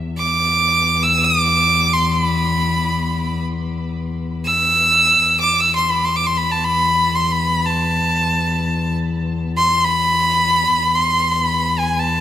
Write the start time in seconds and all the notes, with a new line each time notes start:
Already playing: E2
0.18 D6
1.03 E6
1.25 D6
1.93 C6
2.11 B5
4.45 E6
5.24 E2
5.41 D6
5.60 E6
5.76 C6
5.91 B5
6.05 C6
6.16 D6
6.27 C6
6.37 B5
6.51 A5
6.64 B5
7.15 C6
7.32 B5
7.66 A5
9.58 C6
9.85 B5
10.75 E2
10.95 C6
11.31 B5
11.79 G#5
12.00 A5